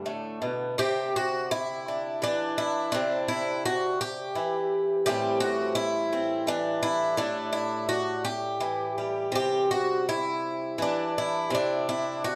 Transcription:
twelve-string acoustic guitar
Already playing: D3 A3 D4
0.06 A2
0.42 B2
0.78 C3 G4
1.16 F#4
1.51 E4
1.88 D4
2.22 E3 D4
2.58 E4
2.92 C3 D4
3.28 E4
3.65 F#4
4.01 G4
4.35 E3
5.06 A2 E3 G3 C4 G4
5.40 F#4
5.75 E4
6.13 C4
6.47 E3 D4
6.83 E4
7.17 A2 D4
7.53 E4
7.89 F#4
8.25 G4
8.60 E3
8.98 G3
9.32 C3 G4
9.71 F#4
10.09 E4
10.78 E3
10.82 D4
11.18 E4
11.50 C3
11.55 D4
11.89 E4
12.24 F#4

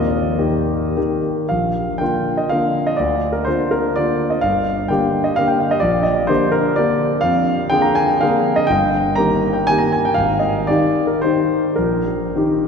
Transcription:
grand piano
Already playing: D#2 A#4 D#5
0.39 D#3 A#3 G4
0.97 D#3 A#3 G4
1.49 A#1 F5
1.98 D3 A#3 F4 G5
2.37 D#5
2.49 D3 A#3 F4 F5
2.87 D#5
2.97 D2 D5
3.32 A#4
3.45 D3 A#3 F4 C5
3.71 A#4
3.96 D3 A#3 F4 D5
4.30 D#5
4.41 G1 F5
4.88 D3 A#3 G4 G5
5.24 D#5
5.36 D3 A#3 G4 F5
5.48 G5
5.60 F5
5.71 D#5
5.80 A#1 D5
6.03 D#5
6.15 D5
6.27 D3 A#3 G4 C5
6.52 A#4
6.76 D3 A#3 G4 D5
7.21 F2 F5
7.70 D3 A#3 G#4 G5
7.82 A#5
7.95 G#5
8.07 G5
8.21 D3 A#3 G#4 F5
8.56 D#5
8.67 G1 G5
9.16 D#3 A#3 G4 A#5
9.53 G5
9.67 D#3 A#3 G4 G#5
9.78 A#5
9.92 G#5
10.05 G5
10.14 G#1 F5
10.39 D#5
10.67 D#3 D#4 G4 D5
11.07 A#4
11.22 D#3 D#4 G4 C5
11.76 A#1 A#4
12.36 D#3 D#4 G4

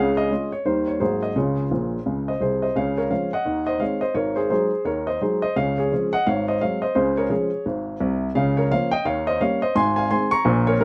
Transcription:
grand piano
Already playing: C#2 C#3 G#4 C#5 F5
0.17 D#5
0.31 G#3 C#4 F4
0.52 C#5
0.65 D#2 D#3 G3 A#3 D#4 C5
0.88 C#5
1.00 G#1 G#2 F#3 A#3 D#4 F#4 G#4 C5
1.23 D#5
1.36 C#2 C#3 F4 G#4 C#5
1.71 A#1 A#2
2.06 C#2 C#3
2.28 C5 D#5
2.41 C2 C3 G#4 C5
2.62 C5 D#5
2.76 C#2 C#3 C#5 F5
2.98 A#4 C#5
3.10 F3 G#3 C#4 C#5 F5
3.33 D#5 F#5
3.45 D#2 D#3
3.67 C5 D#5
3.79 D#3 G#3 C4 C#5 F5
4.01 C5 D#5
4.14 G#1 G#2 A#4 C#5
4.36 G#4 C5
4.50 F#3 G#3 D#4 G#4 C5
4.85 D#2 D#3 A#4 C#5
5.07 C5 D#5
5.21 F#3 G#3 D#4 G#4 C5
5.42 C5 D#5
5.56 C#2 C#3 C#5 F5
5.78 G#4 C#5
5.92 F3 G#3 C#4
6.13 D#5 F#5
6.27 G#1 G#2 C#5 F5
6.48 C5 D#5
6.61 F#3 G#3 C4 C#5 F5
6.82 C5 D#5
6.95 C#2 C#3 G#4 C5
7.17 A#4 C#5
7.30 F3 G#3 C#4 G#4 C#5
7.66 G#1 G#2
8.00 C2 C3
8.35 C#2 C#3 C#5 F5
8.57 A#4 C#5
8.71 F3 A#3 C#4 C#5 F5
8.91 D#5 G5
9.05 D#2 D#3 C#5 F5
9.27 C5 D#5
9.40 G3 A#3 C#4 C#5 F5
9.62 C5 D#5
9.75 G#1 G#2 G#5 C6
9.96 F5 G#5
10.10 D#3 G#3 C4 G#5 C6
10.31 A#5 C#6
10.45 A#1 A#2
10.67 A#4 C#5
10.80 D#3 G3 D#4 A#4

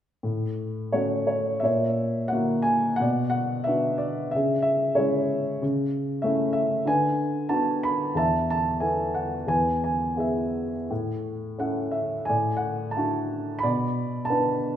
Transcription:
upright piano
0.23 A2
0.92 A3 C#4 F#4 C#5
1.27 C#5
1.60 A#2 E5
1.64 C#5
2.28 F#5
2.32 A#3 E4 F#4
2.62 G#5
2.96 B2 F#5
3.02 D5
3.30 F#5
3.64 B3 D4 F#4 E5
3.98 D5
4.31 C#3 E5
4.36 G#4
4.62 E5
4.95 G#3 C#4 E4 C#5
5.62 C#3
6.22 A3 C#4 E4 E5
6.53 E5
6.86 D3 B4 G#5
7.49 B3 D4 F#4 A5
7.83 B5
8.15 E2 E5 A5
8.50 A5
8.80 B3 E4 A4 G#5
9.14 F#5
9.47 E2 B4 G#5
9.84 G#5
10.16 B3 E4 G#4 E5
10.90 A2
11.59 C#4 E4 A4 F#5
11.91 E5
12.25 A2 D5 G#5
12.57 F#5
12.91 A5
12.96 D4 E4 F#4
13.59 B5
13.63 B2 D5
14.25 A5
14.30 B3 D4 B4

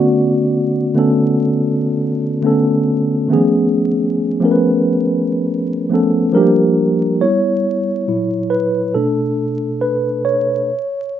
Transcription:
tine electric piano
Already playing: D3 A3 B3 C#4 F#4 D5
0.94 D3 A3 B3 C#4
0.99 A4
2.42 D3 A3 B3 C#4
2.47 A4
3.28 D#3 A3 B3 C#4
3.33 F3 G#4
4.40 F3 A3 B3 C#4
4.45 A#4
4.52 B4
5.89 F3 A3 B3 C#4
5.94 A4
6.32 F3 G3 A3 D4 A#4
6.37 G4
6.41 A#3
7.21 G3 B3 E4 C#5
8.08 A#2 F#3 E4
8.50 B4
8.94 B2 A3 D4 A4
9.81 B4
10.25 C#5

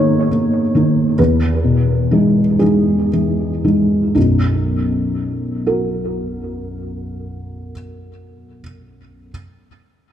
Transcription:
felt piano
Already playing: B2 D#3 A#3 D#4 G#4 C#5
0.31 A#3
0.75 D#3 A#3 D#4
1.19 E2 B4
1.64 B2
2.11 E3 G#3 D#4
2.59 E3 G#3 D#4 G#4
3.13 E3
3.64 E3 G#3 D#4
4.15 B1 F#2 D#4
5.66 F#4 A#4

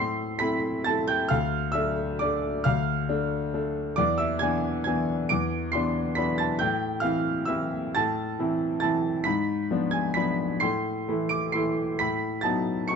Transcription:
grand piano
Already playing: A2 C6 C7
0.39 A3 C4 E4 B5 B6
0.84 A3 C4 E4 A5 A6
1.08 G5 G6
1.29 D2 F5 F6
1.72 A3 D4 E5 E6
2.19 A3 D4 D5 D6
2.64 D2 F5 F6
3.09 A3 D4
3.54 A3 D4
3.96 E2 D5 D6
4.18 E5 E6
4.39 E3 B3 D4 G#5 G#6
4.84 E3 B3 D4 G#5 G#6
5.29 E2 D6 D7
5.72 E3 B3 D4 C6 C7
6.15 E3 B3 D4 B5 B6
6.38 A5 A6
6.59 A2 G5 G6
7.00 E3 C4 E4 F5 F6
7.45 E3 C4 E4 E5 E6
7.95 A2 A5 A6
8.39 E3 C4 E4
8.80 E3 C4 E4 A5 A6
9.24 G#2 B5 B6
9.71 F3 B3 D4
9.91 G#5 G#6
10.14 F3 B3 D4 B5 B6
10.60 A2 C6 C7
11.08 E3 A3 E4
11.29 D6 D7
11.52 E3 A3 E4 C6 C7
11.99 A2 B5 B6
12.41 F#3 B3 D#4 A5 A6
12.88 F#3 B3 D#4 C#6 C#7

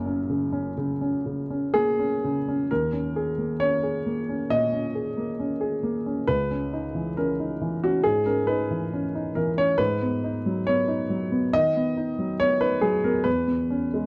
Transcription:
grand piano
Already playing: F#1 F#2 C#3 A#3 C#4 A#4
0.06 C#4
0.30 C#3
0.53 C#4
0.77 C#3
1.01 C#4
1.26 C#3
1.50 C#4
1.74 A#3 G#4
1.99 C#4
2.24 C#3
2.48 C#4
2.71 D#2 A#4
2.93 C#4
3.16 G#4
3.38 A#3
3.60 C#4 C#5
3.83 G#4
4.06 A#3
4.29 C#4
4.50 A#2 D#5
4.73 C#4
4.95 G#4
5.17 A#3
5.40 C#4
5.61 G#4
5.83 A#3
6.06 C#4
6.28 C#2 B4
6.51 C#4
6.73 D#4
6.95 E3
7.17 C#4 A#4
7.40 D#4
7.61 E3
7.84 C#4 F#4
8.04 G#2 G#4
8.26 C#4 A#4
8.47 D#4 B4
8.71 E3
8.94 C#4
9.15 D#4
9.35 E3 A#4
9.57 C#4 C#5
9.78 G#2 B4
10.02 B3
10.24 D#4
10.46 F#3
10.67 B3 C#5
10.88 D#4
11.10 F#3
11.32 B3
11.53 D#3 D#5
11.77 B3
11.97 D#4
12.19 F#3
12.40 B3 C#5
12.61 D#4 B4
12.81 F#3 G#4
13.04 B3 A#4
13.24 E2 B4
13.47 B3
13.70 C#4
13.94 G#3

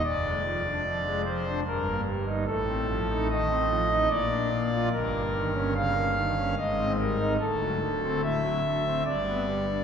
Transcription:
pipe organ
0.04 F1 F2 D5
0.25 G#3
0.44 F3
0.66 D4
0.85 F3
1.06 G#3
1.26 F3 C5
1.46 D4
1.66 G1 G2 A#4
1.87 A#3
2.06 G3
2.26 D#4
2.46 A1 A2 A4
2.68 C4
2.88 F3
3.08 D#4
3.30 D#3 D#5
3.49 C4
3.69 F3
3.90 D#4
4.09 A#1 A#2 D5
4.30 D4
4.51 A#3
4.71 F4
4.92 G1 G2 A#4
5.12 A#3
5.33 D#3
5.54 C#4
5.75 C#3 F5
5.96 A#3
6.16 D#3
6.36 C#4
6.57 G#1 G#2 D#5
6.78 C4
6.98 G3 A#4
7.19 D#4
7.40 D1 D2 A4
7.61 F#3
7.82 D3
8.03 C4
8.22 A2 E5
8.43 F#3
8.65 D3
8.85 C4
9.05 G1 G2 D5
9.26 B3
9.47 G3
9.67 D4

